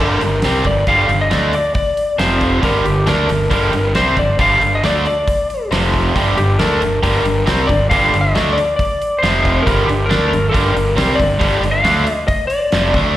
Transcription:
0.00 fingered electric bass G1, overdriven electric guitar G2 D3 G3, lead electric guitar A#4
0.21 fingered electric bass G1, overdriven electric guitar G2 D3, open hi-hat
0.42 fingered electric bass C2, overdriven electric guitar C3 G3 C4, snare, open hi-hat
0.64 fingered electric bass G1, overdriven electric guitar G2 D3, lead electric guitar D5, kick, open hi-hat
0.87 fingered electric bass G1, overdriven electric guitar G2 D3 G3, lead electric guitar F5, kick, open hi-hat
1.09 fingered electric bass G1, overdriven electric guitar G2 D3, open hi-hat
1.21 lead electric guitar D#5
1.31 fingered electric bass D2, overdriven electric guitar D3 A3 D4, snare, open hi-hat
1.53 lead electric guitar D5, open hi-hat
1.74 lead electric guitar D5, kick, open hi-hat
1.97 open hi-hat
2.18 fingered electric bass F1, overdriven electric guitar F2 C3 F3, lead electric guitar C5, snare, open hi-hat
2.41 kick, open hi-hat
2.62 fingered electric bass G1, overdriven electric guitar G2 D3 G3, lead electric guitar A#4, kick, open hi-hat
2.84 fingered electric bass G1, overdriven electric guitar G2 D3, lead electric guitar G4, open hi-hat
3.06 fingered electric bass D2, overdriven electric guitar D3 A3 D4, lead electric guitar A#4, snare, open hi-hat
3.28 fingered electric bass G1, overdriven electric guitar G2 D3, open hi-hat
3.50 fingered electric bass G1, overdriven electric guitar G2 D3 G3, lead electric guitar A#4, kick, open hi-hat
3.72 fingered electric bass G1, overdriven electric guitar G2 D3, open hi-hat
3.94 fingered electric bass C2, overdriven electric guitar C3 G3 C4, lead electric guitar C5, snare, open hi-hat
4.16 fingered electric bass G1, overdriven electric guitar G2 D3, lead electric guitar D5, kick, open hi-hat
4.39 fingered electric bass G1, overdriven electric guitar G2 D3 G3, lead electric guitar F5, kick, open hi-hat
4.60 fingered electric bass G1, overdriven electric guitar G2 D3, open hi-hat
4.75 lead electric guitar D#5
4.84 fingered electric bass D2, overdriven electric guitar D3 A3 D4, lead electric guitar D5, snare, open hi-hat
5.06 lead electric guitar D5, open hi-hat
5.28 kick, open hi-hat
5.50 open hi-hat
5.71 fingered electric bass F1, overdriven electric guitar F2 C3 F3, snare, open hi-hat
5.94 kick, open hi-hat
6.16 fingered electric bass G1, overdriven electric guitar G2 D3 G3, kick, open hi-hat
6.37 fingered electric bass G1, overdriven electric guitar G2 D3, lead electric guitar G4, open hi-hat
6.59 fingered electric bass D2, overdriven electric guitar D3 A3 D4, lead electric guitar A#4, snare, open hi-hat
6.81 fingered electric bass G1, overdriven electric guitar G2 D3, open hi-hat
7.03 fingered electric bass G1, overdriven electric guitar G2 D3 G3, lead electric guitar A#4, kick, open hi-hat
7.24 fingered electric bass G1, overdriven electric guitar G2 D3, open hi-hat
7.46 fingered electric bass C2, overdriven electric guitar C3 G3 C4, snare, open hi-hat
7.67 fingered electric bass G1, overdriven electric guitar G2 D3, lead electric guitar D5, kick, open hi-hat
7.90 fingered electric bass G1, overdriven electric guitar G2 D3 G3, lead electric guitar F5, kick, open hi-hat
8.03 snare
8.13 fingered electric bass G1, overdriven electric guitar G2 D3, open hi-hat
8.21 lead electric guitar D#5
8.35 fingered electric bass D2, overdriven electric guitar D3 A3 D4, snare, open hi-hat
8.53 lead electric guitar D5
8.58 open hi-hat
8.76 lead electric guitar D5, kick, open hi-hat
9.02 open hi-hat
9.19 lead electric guitar C5
9.23 fingered electric bass F1, overdriven electric guitar F2 C3 F3, snare, open hi-hat
9.45 kick, open hi-hat
9.62 overdriven electric guitar G2 D3 G3, lead electric guitar A#4
9.67 fingered electric bass G1, kick, open hi-hat
9.85 fingered electric bass G1, overdriven electric guitar G2 D3, lead electric guitar G4
9.89 open hi-hat
10.06 overdriven electric guitar D3, lead electric guitar A#4
10.10 fingered electric bass D2, overdriven electric guitar A3 D4, snare, open hi-hat
10.28 overdriven electric guitar G2 D3, lead electric guitar A#4
10.32 fingered electric bass G1, open hi-hat
10.49 overdriven electric guitar G2 D3 G3, lead electric guitar A#4
10.54 fingered electric bass G1, kick, open hi-hat
10.75 fingered electric bass G1, overdriven electric guitar G2 D3, open hi-hat
10.96 fingered electric bass C2, overdriven electric guitar C3 G3 C4, snare, open hi-hat
11.15 overdriven electric guitar G2 D3, lead electric guitar D5
11.20 fingered electric bass G1, kick, open hi-hat
11.39 fingered electric bass G1, overdriven electric guitar G2 D3 G3, kick, open hi-hat
11.62 fingered electric bass G1, overdriven electric guitar G2 D3, open hi-hat
11.71 lead electric guitar F5
11.84 fingered electric bass D2, overdriven electric guitar D3 A3 D4, snare, open hi-hat
12.07 open hi-hat
12.13 lead electric guitar D#5
12.28 lead electric guitar D#5, kick, open hi-hat
12.47 lead electric guitar D5, open hi-hat
12.72 fingered electric bass F1, overdriven electric guitar F2 C3 F3, snare, open hi-hat
12.94 fingered electric bass D2, overdriven electric guitar D3 A3 D4, kick, open hi-hat

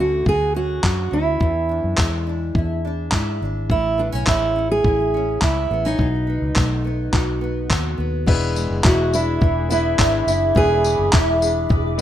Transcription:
Already playing: fingered electric bass D2, nylon-string guitar D3 A3 C#4
0.00 steel-string acoustic guitar F#4
0.25 fingered electric bass D2, nylon-string guitar F#4, steel-string acoustic guitar G#4, kick
0.55 nylon-string guitar C#4, steel-string acoustic guitar F#4
0.83 fingered electric bass F#2, nylon-string guitar F#4, kick, clap
1.11 fingered electric bass D2, nylon-string guitar C#4, steel-string acoustic guitar E4
1.40 nylon-string guitar E2, fingered electric bass E2, kick
1.69 nylon-string guitar D4
1.84 fingered electric bass F#2
1.97 fingered electric bass E2, nylon-string guitar G#3, kick, clap
2.27 nylon-string guitar D4
2.55 fingered electric bass E2, nylon-string guitar E4, kick
2.85 nylon-string guitar D4
3.11 fingered electric bass G#2, nylon-string guitar E4, kick, clap
3.42 fingered electric bass G#1, nylon-string guitar D4
3.70 fingered electric bass A1, nylon-string guitar A2, steel-string acoustic guitar E4, kick
3.98 nylon-string guitar B3, steel-string acoustic guitar D4
4.12 fingered electric bass B1, nylon-string guitar C#4
4.26 fingered electric bass A1, nylon-string guitar G#3, steel-string acoustic guitar E4, kick, clap
4.56 nylon-string guitar C#4
4.71 steel-string acoustic guitar G#4
4.84 fingered electric bass A1, nylon-string guitar E4, kick
5.14 nylon-string guitar C#4
5.41 fingered electric bass C#2, nylon-string guitar E4, steel-string acoustic guitar E4, kick, clap
5.71 fingered electric bass A1, nylon-string guitar B3
5.85 nylon-string guitar C#4, steel-string acoustic guitar D#4
5.98 fingered electric bass B1, nylon-string guitar B2, kick
6.27 nylon-string guitar B3
6.42 fingered electric bass C#2
6.56 fingered electric bass B1, nylon-string guitar A3, kick, clap
6.85 nylon-string guitar B3
7.13 fingered electric bass B1, nylon-string guitar F#4, kick, clap
7.41 nylon-string guitar B3
7.70 fingered electric bass D#2, nylon-string guitar F#4, kick, clap
7.98 fingered electric bass D#2, nylon-string guitar B3
8.26 fingered electric bass E1, nylon-string guitar E2, grand piano G#3 B3 D4 E4 B4, ambient pad G#4 E5 B5 D6, kick, crash
8.56 nylon-string guitar G#3, tambourine
8.70 fingered electric bass F#1
8.84 fingered electric bass E1, nylon-string guitar E4, steel-string acoustic guitar F#4, kick, clap
9.13 nylon-string guitar D4, steel-string acoustic guitar E4, tambourine
9.41 fingered electric bass E1, nylon-string guitar E3, kick
9.69 grand piano G#3 B3 D4 E4 B4, nylon-string guitar E4, steel-string acoustic guitar E4, tambourine
9.99 fingered electric bass G#1, nylon-string guitar D4, kick, clap
10.27 fingered electric bass F#1, nylon-string guitar E4, tambourine
10.54 fingered electric bass E1, nylon-string guitar E2, grand piano G#3 B3 D4 E4 B4, steel-string acoustic guitar G#4, kick
10.84 nylon-string guitar G#3, tambourine
10.99 fingered electric bass F#1
11.13 fingered electric bass E1, nylon-string guitar E4, kick, clap
11.42 nylon-string guitar D4, tambourine
11.69 fingered electric bass E1, nylon-string guitar E3, kick
11.98 grand piano G#3

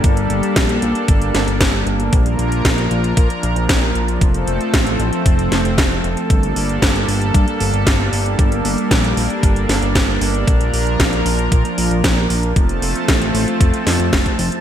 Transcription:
Already playing: analog synth pad G3 A#3 D4 A4
0.04 analog synth bass G1, kick, closed hi-hat
0.17 closed hi-hat
0.30 analog synth bass G1, closed hi-hat
0.43 closed hi-hat
0.56 analog synth bass A#1, kick, snare, closed hi-hat
0.69 closed hi-hat
0.82 analog synth bass A#1, closed hi-hat
0.95 closed hi-hat
1.08 analog synth bass G1, kick, closed hi-hat
1.22 closed hi-hat
1.34 analog synth bass G1, snare, closed hi-hat
1.47 analog synth bass G1, closed hi-hat
1.61 analog synth bass G1, kick, snare, closed hi-hat
1.87 analog synth bass G1, closed hi-hat
2.00 closed hi-hat
2.13 analog synth bass A#1, analog synth pad F3 A#4, kick, closed hi-hat
2.26 closed hi-hat
2.39 analog synth bass A#1, closed hi-hat
2.52 closed hi-hat
2.65 analog synth bass A#1, kick, snare, closed hi-hat
2.78 closed hi-hat
2.91 analog synth bass A#1, closed hi-hat
3.04 closed hi-hat
3.17 analog synth bass A#2, kick, closed hi-hat
3.30 closed hi-hat
3.43 analog synth bass A#1, closed hi-hat
3.56 analog synth bass A#1, closed hi-hat
3.69 analog synth bass A#1, kick, snare, closed hi-hat
3.95 analog synth bass A#1, closed hi-hat
4.08 closed hi-hat
4.21 analog synth bass F1, analog synth pad A3 C4 A4, kick, closed hi-hat
4.34 closed hi-hat
4.47 analog synth bass F1, closed hi-hat
4.61 closed hi-hat
4.74 analog synth bass A1, kick, snare, closed hi-hat
4.87 closed hi-hat
5.00 analog synth bass A1, closed hi-hat
5.13 closed hi-hat
5.26 analog synth bass F1, kick, closed hi-hat
5.39 closed hi-hat
5.52 analog synth bass F1, snare, closed hi-hat
5.65 analog synth bass F1, closed hi-hat
5.78 analog synth bass F1, kick, snare, closed hi-hat
6.04 analog synth bass F1, closed hi-hat
6.17 closed hi-hat
6.30 analog synth bass G1, analog synth pad G3 A#3 D4, kick, closed hi-hat
6.43 closed hi-hat
6.56 analog synth bass G1, open hi-hat
6.69 closed hi-hat
6.82 analog synth bass G1, kick, snare, closed hi-hat
6.96 closed hi-hat
7.08 analog synth bass G1, open hi-hat
7.22 closed hi-hat
7.34 analog synth bass G2, kick, closed hi-hat
7.48 closed hi-hat
7.60 analog synth bass G1, open hi-hat
7.74 analog synth bass G1, closed hi-hat
7.87 analog synth bass G1, kick, snare, closed hi-hat
8.13 analog synth bass G1, open hi-hat
8.26 closed hi-hat
8.39 analog synth bass G1, kick, closed hi-hat
8.52 closed hi-hat
8.65 analog synth bass G1, open hi-hat
8.78 closed hi-hat
8.91 analog synth bass A#1, kick, snare, closed hi-hat
9.04 closed hi-hat
9.17 analog synth bass A#1, open hi-hat
9.30 closed hi-hat
9.43 analog synth bass G1, kick, closed hi-hat
9.56 closed hi-hat
9.69 analog synth bass G1, snare, open hi-hat
9.82 analog synth bass G1, closed hi-hat
9.95 analog synth bass G1, kick, snare, closed hi-hat
10.21 analog synth bass G1, open hi-hat
10.35 closed hi-hat
10.47 analog synth bass A#1, analog synth pad F3 A#4, kick, closed hi-hat
10.61 closed hi-hat
10.74 analog synth bass A#1, open hi-hat
10.87 closed hi-hat
11.00 analog synth bass A#1, kick, snare, closed hi-hat
11.13 closed hi-hat
11.26 analog synth bass A#1, open hi-hat
11.39 closed hi-hat
11.52 analog synth bass A#2, kick, closed hi-hat
11.65 closed hi-hat
11.78 analog synth bass A#1, open hi-hat
11.91 analog synth bass A#1, closed hi-hat
12.04 analog synth bass A#1, kick, snare, closed hi-hat
12.30 analog synth bass A#1, open hi-hat
12.43 closed hi-hat
12.56 analog synth bass F1, analog synth pad F3 A3 C4 A5, kick, closed hi-hat
12.69 closed hi-hat
12.82 analog synth bass F1, open hi-hat
12.95 closed hi-hat
13.08 analog synth bass A1, kick, snare, closed hi-hat
13.22 closed hi-hat
13.34 analog synth bass A1, open hi-hat
13.48 closed hi-hat
13.61 analog synth bass F2, kick, closed hi-hat
13.74 closed hi-hat
13.86 analog synth bass F2, snare, open hi-hat
14.00 analog synth bass F2, closed hi-hat
14.13 analog synth bass F1, kick, snare, open hi-hat
14.26 kick, closed hi-hat
14.39 analog synth bass F1, open hi-hat
14.52 closed hi-hat

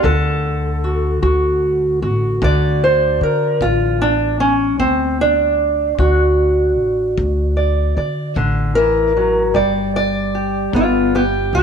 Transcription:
0.03 upright bass D2, steel-string acoustic guitar D3 A4, kick
0.84 steel-string acoustic guitar F#4
1.22 upright bass D2, steel-string acoustic guitar F#4, kick
2.02 upright bass A1, steel-string acoustic guitar F#4
2.42 upright bass D2, steel-string acoustic guitar D3 D5, kick
2.84 steel-string acoustic guitar C5
3.21 upright bass D3, steel-string acoustic guitar A#4
3.61 upright bass A1, steel-string acoustic guitar F4, kick
4.02 steel-string acoustic guitar D4
4.40 steel-string acoustic guitar C#4
4.80 upright bass D2, steel-string acoustic guitar C4, kick
5.21 steel-string acoustic guitar D4
5.98 upright bass D2, steel-string acoustic guitar F#4, kick
6.78 upright bass A1
7.17 upright bass D2, kick
7.57 steel-string acoustic guitar D5
7.97 upright bass D3, steel-string acoustic guitar D5
8.36 upright bass A1, steel-string acoustic guitar D3 F4, kick
8.75 steel-string acoustic guitar E3 A#4
9.17 steel-string acoustic guitar F#3
9.54 upright bass G1, steel-string acoustic guitar G3 D5, kick
9.96 steel-string acoustic guitar D5
10.35 steel-string acoustic guitar G4
10.73 upright bass G1, steel-string acoustic guitar B3 F4 A4, kick
11.15 steel-string acoustic guitar B3 G4
11.53 upright bass D2, steel-string acoustic guitar G4

